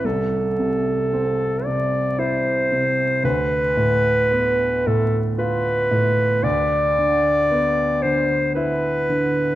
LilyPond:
<<
  \new Staff \with { instrumentName = "Clarinet" } { \time 3/4 \key a \minor \tempo 4 = 57 a'4. d''8 c''4 | b'4. a'8 b'4 | d''4. c''8 b'4 | }
  \new Staff \with { instrumentName = "Grand piano" } { \clef bass \time 3/4 \key a \minor c,8 c8 c'8 c8 e'8 c8 | d,8 a,8 b8 a,8 f'8 a,8 | d,8 d8 b8 d8 e'8 d8 | }
>>